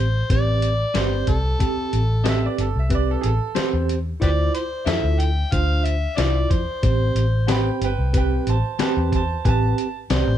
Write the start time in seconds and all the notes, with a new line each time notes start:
Already playing: A1 C5
0.30 A1 C4 G4 B4 D5, kick, closed hi-hat
0.62 closed hi-hat
0.94 G1 A3 C4 G4 B4 C5 D5, snare, closed hi-hat
1.27 C2 A4, kick, closed hi-hat
1.60 C4 G4 A4, kick, closed hi-hat
1.93 A1, closed hi-hat
2.24 A3 C4 G4 B4 D#5, snare, closed hi-hat
2.28 E5
2.46 D5
2.58 G1 A4, closed hi-hat
2.76 C2 E5
2.90 C4 G4 B4, kick, closed hi-hat
2.95 D5
3.11 A4
3.21 A1 G#4, closed hi-hat
3.26 A4
3.55 A3 C4 G4 B4 C5, muted fingered electric bass stroke, snare, closed hi-hat
3.73 E2
3.89 closed hi-hat
4.20 D2 E4 F4 G4 B4 C5 D5, kick, closed hi-hat
4.55 C5, closed hi-hat
4.86 F2 D4 E4 F4 A4 C5 E5, snare, closed hi-hat
5.04 D2
5.20 G5, closed hi-hat
5.52 D2 D4 F4 C5 F5, kick, closed hi-hat
5.86 E5, closed hi-hat
6.17 C2 D4 E4 F4 C5 D5 E5, snare, closed hi-hat
6.51 F2 C5, kick, closed hi-hat
6.83 A1 C4 G4 C5, kick, closed hi-hat
7.15 A1, closed hi-hat
7.47 A3 C4 G4 B4 C5 F#5 B5, snare, closed hi-hat
7.52 G5
7.81 G1 B4 G5, closed hi-hat
7.99 C2
8.13 C4 G4 B4, kick, closed hi-hat
8.17 G5
8.47 A1 C5 A5, closed hi-hat
8.79 A3 C4 G4 B4 C5 A5, muted fingered electric bass stroke, snare, closed hi-hat
8.97 E2
9.12 C5 A5, kick, closed hi-hat
9.45 A1 C4 G4 B4 G#5, kick, closed hi-hat
9.49 A5
9.78 closed hi-hat
10.10 C2 A3 C4 G4 B4 C5 D5, snare, closed hi-hat
10.27 A1